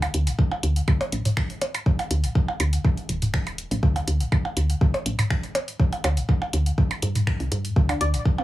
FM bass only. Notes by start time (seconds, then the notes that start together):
0.14 D2
0.27 A1
0.63 D2
0.88 D2
1.12 A1
2.11 D2
2.24 A1
2.60 D2
3.09 D1
3.71 A1
3.83 D2
4.07 D2
4.20 A1
4.57 D2
4.81 D2
5.06 A1
6.04 D2
6.17 A1
6.53 D2
7.03 G2
7.40 C2
7.52 G2
7.76 D2
8.01 D2
8.14 A1